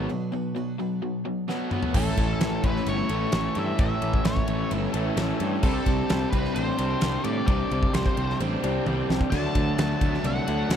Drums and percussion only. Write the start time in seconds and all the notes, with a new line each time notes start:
1.49 snare
1.71 mid tom
1.83 floor tom
1.94 kick, crash
2.17 kick, ride
2.41 snare, ride
2.63 kick, ride
2.76 snare
2.86 ride
3.09 ride
3.32 snare, ride
3.55 ride
3.79 kick, ride
4.02 ride
4.13 kick
4.25 snare, ride
4.36 kick
4.48 ride
4.71 ride
4.94 ride
5.17 snare, ride
5.40 ride
5.63 kick, crash
5.86 kick, ride
6.09 snare, ride
6.33 kick, ride
6.45 snare
6.56 ride
6.78 ride
7.01 snare, ride
7.24 ride
7.47 kick, ride
7.71 ride
7.83 kick
7.94 snare, ride
8.06 kick
8.17 ride
8.30 snare
8.40 ride
8.64 ride
8.87 high tom
9.10 snare
9.21 kick
9.32 kick, ride, crash
9.55 kick, ride
9.78 snare, ride
10.01 kick, ride
10.14 snare
10.24 ride
10.48 ride
10.70 snare, ride